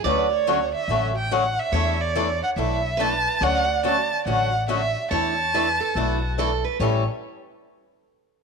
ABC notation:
X:1
M:4/4
L:1/8
Q:"Swing" 1/4=142
K:A
V:1 name="Violin"
B c2 e2 =g f e- | e d2 f e2 a2 | f2 a2 f2 e2 | a6 z2 |
z8 |]
V:2 name="Steel-string acoustic guitar"
d8 | c6 B2 | d8 | c2 B A F2 A B |
c z6 z |]
V:3 name="Steel-string acoustic guitar"
[D,A,CFA] z [D,A,CFA] z [D,A,CFA] z [D,A,CFA] z | [E,A,DEA] z [E,A,DEA] z [E,A,DEA] z [E,A,DEA] z | [D,A,CFA] z [D,A,CFA] z [D,A,CFA] z [D,A,CFA] z | [E,A,DEA] z [E,A,DEA] z [E,A,DEA] z [E,A,DEA] z |
[A,,E,=G,CEA] z6 z |]
V:4 name="Steel-string acoustic guitar"
[D,F,A,CF] z [D,F,A,CF] z [D,F,A,CF] z [D,F,A,CF] z | [E,A,DEA] z [E,A,DEA] z [E,A,DEA] z [E,A,DEA] z | [D,F,A,CF] z [D,F,A,CF] z [D,F,A,CF] z [D,F,A,CF] z | [E,A,DEA] z [E,A,DEA] z [E,A,DEA] z [E,A,DEA] z |
[A,,E,=G,CEA] z6 z |]
V:5 name="Upright bass" clef=bass
D,,4 A,,,4 | E,,4 B,,,4 | D,,4 A,,,4 | E,,4 B,,,4 |
A,,, z6 z |]